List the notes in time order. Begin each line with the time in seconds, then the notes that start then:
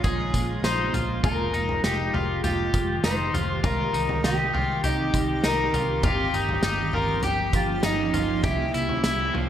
Already playing: C#3 G#3 A#3 F4
0.04 A#1 G#4, kick, floor tom, tambourine
0.34 A#1, kick, tambourine
0.62 A#1 D#4 C5, snare, tambourine
0.93 A#1 F4, floor tom, tambourine
1.23 F1 D#3 G#3 F4 G4 A#4, kick, floor tom, tambourine
1.54 F1 D#4, tambourine
1.69 floor tom
1.83 F1 D#4 G4, snare, tambourine
2.14 F1 F4, floor tom
2.44 F1 F4 G4, floor tom, tambourine
2.74 F1, kick, tambourine
3.04 F1 D#4 C5, snare, tambourine
3.34 F1 F4, floor tom, tambourine
3.64 C2 C4 F4 A#4, kick, floor tom, tambourine
3.93 C2 D#4, tambourine
4.09 floor tom
4.24 C2 D#4 G4, snare, tambourine
4.54 C2 F4, floor tom
4.84 C2 D#4 G4, floor tom, tambourine
5.14 C2, kick, tambourine
5.44 C2 D#4 A#4, snare, tambourine
5.73 C2 F4, floor tom, tambourine
6.03 G1 F3 A#3 C#4 F4 G4, kick, floor tom, tambourine
6.33 G1 D#4, tambourine
6.49 floor tom
6.63 G1 D#4, snare, tambourine
6.93 G1 F4 A#4, floor tom
7.23 G1 G4, floor tom, tambourine
7.53 G1 F4, kick, tambourine
7.83 G1 D#4, snare, tambourine
8.14 G1 F4, floor tom, tambourine
8.44 C2 G3 C4 E4 G4, kick, floor tom, tambourine
8.74 C2 E4, tambourine
8.89 floor tom
9.04 C2 E4, snare, tambourine
9.34 C2 F3, floor tom